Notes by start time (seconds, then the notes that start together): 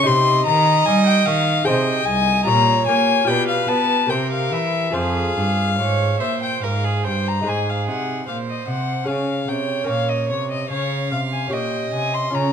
0.03 D#4 G4 C5 D#5 C6
0.08 C3
0.46 D#3 A#5
0.85 G3 G#5
1.06 G5
1.26 D#3 F5
1.64 C3 D#4 G#4 C5 D#5 G5
1.68 C3
2.06 C2 G#5
2.44 F4 G4 C#5 A#5
2.48 A#2
2.87 A#3 G#5
3.25 B2 F4 G4 D5 G5
3.29 B2 B4
3.48 F5
3.68 B3 A5
4.07 C3 G4 A#4 C5 G5
4.11 C3 A#4
4.32 F5
4.52 E3 E5
4.90 F4 G#4 C5 F5
4.94 F2 G#4
5.37 G2
5.78 G#2 C#5
6.20 A#2 C5 E5
6.43 G5
6.63 G#2 A#4 F5
6.84 G#4
7.04 G2 C5 G5
7.28 A#5
7.41 G#3 D#4 G#4
7.45 G#2 G#4 C5 G#5
7.69 F5
7.88 C3 F#5
8.28 A#2 C5 F5
8.50 D#5
8.68 C3 F#5
9.04 C#4 G#4 C#5 F5
9.08 C#3
9.48 C3 G5
9.84 C#4 A#4 C#5
9.89 A#2 F5
10.09 D#5
10.29 C3 C#5
10.51 D#5
10.70 C#3 C#5 F5
11.11 C3 F5
11.32 G#5
11.48 A#2 C#4 G4 C#5
11.53 A#2 D#5 G5
11.93 C3 G#5
12.14 C6
12.30 C#3 C#4 F4 C#5
12.34 C#3 A#5